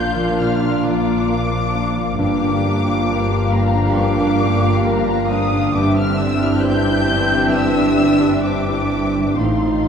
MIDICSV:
0, 0, Header, 1, 8, 480
1, 0, Start_track
1, 0, Tempo, 894188
1, 1170, Time_signature, 4, 2, 24, 8
1, 4044, Tempo, 927357
1, 5259, End_track
2, 0, Start_track
2, 0, Title_t, "Violin section"
2, 0, Program_c, 0, 48
2, 0, Note_on_c, 0, 91, 99
2, 204, Note_off_c, 0, 91, 0
2, 214, Note_on_c, 0, 89, 82
2, 450, Note_off_c, 0, 89, 0
2, 454, Note_on_c, 0, 86, 103
2, 1172, Note_off_c, 0, 86, 0
2, 1179, Note_on_c, 0, 86, 112
2, 1885, Note_off_c, 0, 86, 0
2, 1901, Note_on_c, 0, 82, 92
2, 2135, Note_off_c, 0, 82, 0
2, 2137, Note_on_c, 0, 86, 106
2, 2608, Note_on_c, 0, 82, 100
2, 2612, Note_off_c, 0, 86, 0
2, 2848, Note_off_c, 0, 82, 0
2, 2851, Note_on_c, 0, 87, 108
2, 3085, Note_on_c, 0, 86, 106
2, 3089, Note_off_c, 0, 87, 0
2, 3206, Note_off_c, 0, 86, 0
2, 3211, Note_on_c, 0, 89, 104
2, 3325, Note_off_c, 0, 89, 0
2, 3325, Note_on_c, 0, 88, 110
2, 3444, Note_off_c, 0, 88, 0
2, 3450, Note_on_c, 0, 89, 101
2, 3559, Note_on_c, 0, 91, 125
2, 3566, Note_off_c, 0, 89, 0
2, 4042, Note_off_c, 0, 91, 0
2, 4042, Note_on_c, 0, 88, 119
2, 4512, Note_on_c, 0, 86, 99
2, 4520, Note_off_c, 0, 88, 0
2, 4988, Note_off_c, 0, 86, 0
2, 4995, Note_on_c, 0, 84, 81
2, 5259, Note_off_c, 0, 84, 0
2, 5259, End_track
3, 0, Start_track
3, 0, Title_t, "Violin section"
3, 0, Program_c, 1, 48
3, 0, Note_on_c, 1, 65, 73
3, 0, Note_on_c, 1, 77, 77
3, 1151, Note_off_c, 1, 65, 0
3, 1151, Note_off_c, 1, 77, 0
3, 1170, Note_on_c, 1, 67, 73
3, 1174, Note_on_c, 1, 77, 81
3, 3066, Note_off_c, 1, 67, 0
3, 3069, Note_off_c, 1, 77, 0
3, 3083, Note_on_c, 1, 76, 84
3, 3084, Note_on_c, 1, 67, 83
3, 4979, Note_off_c, 1, 67, 0
3, 4999, Note_off_c, 1, 76, 0
3, 5000, Note_on_c, 1, 65, 62
3, 5000, Note_on_c, 1, 77, 62
3, 5259, Note_off_c, 1, 65, 0
3, 5259, Note_off_c, 1, 77, 0
3, 5259, End_track
4, 0, Start_track
4, 0, Title_t, "Grand piano"
4, 0, Program_c, 2, 0
4, 0, Control_c, 2, 64, 127
4, 0, Note_on_c, 2, 46, 67
4, 0, Note_on_c, 2, 53, 42
4, 0, Note_on_c, 2, 62, 47
4, 0, Note_on_c, 2, 65, 47
4, 0, Note_on_c, 2, 70, 53
4, 89, Note_off_c, 2, 53, 0
4, 89, Note_on_c, 2, 53, 48
4, 158, Note_off_c, 2, 62, 0
4, 184, Note_off_c, 2, 46, 0
4, 212, Note_on_c, 2, 46, 55
4, 279, Note_off_c, 2, 53, 0
4, 332, Note_on_c, 2, 62, 43
4, 454, Note_on_c, 2, 53, 45
4, 521, Note_off_c, 2, 62, 0
4, 574, Note_off_c, 2, 65, 0
4, 574, Note_on_c, 2, 65, 52
4, 642, Note_off_c, 2, 53, 0
4, 691, Note_off_c, 2, 70, 0
4, 691, Note_on_c, 2, 70, 51
4, 763, Note_off_c, 2, 65, 0
4, 813, Note_on_c, 2, 65, 47
4, 882, Note_off_c, 2, 70, 0
4, 938, Note_on_c, 2, 62, 51
4, 1003, Note_off_c, 2, 65, 0
4, 1058, Note_on_c, 2, 53, 48
4, 1127, Note_off_c, 2, 62, 0
4, 1152, Note_off_c, 2, 46, 0
4, 1173, Note_on_c, 2, 43, 73
4, 1175, Note_off_c, 2, 53, 0
4, 1181, Control_c, 2, 64, 0
4, 1264, Control_c, 2, 64, 127
4, 1300, Note_on_c, 2, 50, 49
4, 1422, Note_on_c, 2, 62, 52
4, 1490, Note_off_c, 2, 50, 0
4, 1543, Note_on_c, 2, 65, 56
4, 1612, Note_off_c, 2, 62, 0
4, 1662, Note_on_c, 2, 70, 57
4, 1732, Note_off_c, 2, 65, 0
4, 1781, Note_on_c, 2, 65, 59
4, 1851, Note_off_c, 2, 70, 0
4, 1899, Note_on_c, 2, 62, 52
4, 1969, Note_off_c, 2, 65, 0
4, 2013, Note_on_c, 2, 50, 55
4, 2087, Note_off_c, 2, 62, 0
4, 2112, Note_off_c, 2, 43, 0
4, 2132, Note_on_c, 2, 43, 65
4, 2203, Note_off_c, 2, 50, 0
4, 2252, Note_on_c, 2, 62, 56
4, 2373, Note_on_c, 2, 50, 61
4, 2443, Note_off_c, 2, 62, 0
4, 2489, Note_on_c, 2, 65, 61
4, 2563, Note_off_c, 2, 50, 0
4, 2611, Note_on_c, 2, 70, 65
4, 2681, Note_off_c, 2, 65, 0
4, 2732, Note_on_c, 2, 65, 59
4, 2802, Note_off_c, 2, 70, 0
4, 2854, Note_on_c, 2, 62, 52
4, 2922, Note_off_c, 2, 65, 0
4, 2967, Note_on_c, 2, 50, 60
4, 3042, Note_off_c, 2, 62, 0
4, 3066, Note_off_c, 2, 43, 0
4, 3087, Note_off_c, 2, 50, 0
4, 3088, Note_on_c, 2, 43, 73
4, 3098, Control_c, 2, 64, 0
4, 3180, Control_c, 2, 64, 127
4, 3208, Note_on_c, 2, 50, 55
4, 3330, Note_on_c, 2, 62, 58
4, 3398, Note_off_c, 2, 50, 0
4, 3450, Note_on_c, 2, 64, 60
4, 3518, Note_off_c, 2, 62, 0
4, 3567, Note_on_c, 2, 72, 62
4, 3637, Note_off_c, 2, 64, 0
4, 3689, Note_on_c, 2, 64, 55
4, 3756, Note_off_c, 2, 72, 0
4, 3801, Note_on_c, 2, 62, 51
4, 3877, Note_off_c, 2, 64, 0
4, 3922, Note_on_c, 2, 50, 50
4, 3995, Note_off_c, 2, 62, 0
4, 4022, Note_off_c, 2, 43, 0
4, 4042, Note_on_c, 2, 43, 63
4, 4114, Note_off_c, 2, 50, 0
4, 4164, Note_on_c, 2, 62, 51
4, 4279, Note_on_c, 2, 50, 49
4, 4354, Note_off_c, 2, 62, 0
4, 4397, Note_on_c, 2, 64, 50
4, 4472, Note_off_c, 2, 50, 0
4, 4519, Note_on_c, 2, 72, 51
4, 4590, Note_off_c, 2, 64, 0
4, 4641, Note_on_c, 2, 64, 48
4, 4712, Note_off_c, 2, 72, 0
4, 4760, Note_on_c, 2, 62, 42
4, 4833, Note_off_c, 2, 64, 0
4, 4879, Note_on_c, 2, 50, 39
4, 4953, Note_off_c, 2, 62, 0
4, 4980, Note_off_c, 2, 43, 0
4, 4998, Note_on_c, 2, 45, 50
4, 5001, Note_off_c, 2, 50, 0
4, 5012, Control_c, 2, 64, 0
4, 5114, Control_c, 2, 64, 127
4, 5123, Note_on_c, 2, 57, 37
4, 5259, Note_off_c, 2, 45, 0
4, 5259, Note_off_c, 2, 57, 0
4, 5259, End_track
5, 0, Start_track
5, 0, Title_t, "Viola section"
5, 0, Program_c, 3, 48
5, 0, Note_on_c, 3, 58, 57
5, 0, Note_on_c, 3, 62, 64
5, 1151, Note_off_c, 3, 58, 0
5, 1151, Note_off_c, 3, 62, 0
5, 1175, Note_on_c, 3, 58, 67
5, 1175, Note_on_c, 3, 62, 63
5, 3069, Note_off_c, 3, 58, 0
5, 3069, Note_off_c, 3, 62, 0
5, 3090, Note_on_c, 3, 62, 77
5, 3093, Note_on_c, 3, 60, 75
5, 4982, Note_off_c, 3, 62, 0
5, 4983, Note_off_c, 3, 60, 0
5, 5002, Note_on_c, 3, 60, 52
5, 5002, Note_on_c, 3, 63, 53
5, 5259, Note_off_c, 3, 60, 0
5, 5259, Note_off_c, 3, 63, 0
5, 5259, End_track
6, 0, Start_track
6, 0, Title_t, "French horn section"
6, 0, Program_c, 4, 60
6, 0, Note_on_c, 4, 53, 70
6, 0, Note_on_c, 4, 58, 70
6, 1149, Note_off_c, 4, 53, 0
6, 1149, Note_off_c, 4, 58, 0
6, 1179, Note_on_c, 4, 58, 76
6, 1180, Note_on_c, 4, 53, 67
6, 2993, Note_off_c, 4, 53, 0
6, 2993, Note_off_c, 4, 58, 0
6, 3084, Note_on_c, 4, 62, 76
6, 3085, Note_on_c, 4, 52, 78
6, 4979, Note_off_c, 4, 62, 0
6, 5000, Note_off_c, 4, 52, 0
6, 5004, Note_on_c, 4, 53, 59
6, 5005, Note_on_c, 4, 63, 57
6, 5259, Note_off_c, 4, 53, 0
6, 5259, Note_off_c, 4, 63, 0
6, 5259, End_track
7, 0, Start_track
7, 0, Title_t, "Cello section"
7, 0, Program_c, 5, 48
7, 0, Note_on_c, 5, 46, 67
7, 1152, Note_off_c, 5, 46, 0
7, 1171, Note_on_c, 5, 43, 73
7, 3067, Note_off_c, 5, 43, 0
7, 3085, Note_on_c, 5, 43, 84
7, 4979, Note_off_c, 5, 43, 0
7, 5001, Note_on_c, 5, 45, 58
7, 5259, Note_off_c, 5, 45, 0
7, 5259, End_track
8, 0, Start_track
8, 0, Title_t, "Double bass section"
8, 0, Program_c, 6, 48
8, 0, Note_on_c, 6, 34, 61
8, 1152, Note_off_c, 6, 34, 0
8, 1176, Note_on_c, 6, 31, 71
8, 3069, Note_off_c, 6, 31, 0
8, 3089, Note_on_c, 6, 31, 81
8, 4982, Note_off_c, 6, 31, 0
8, 5003, Note_on_c, 6, 33, 58
8, 5259, Note_off_c, 6, 33, 0
8, 5259, End_track
0, 0, End_of_file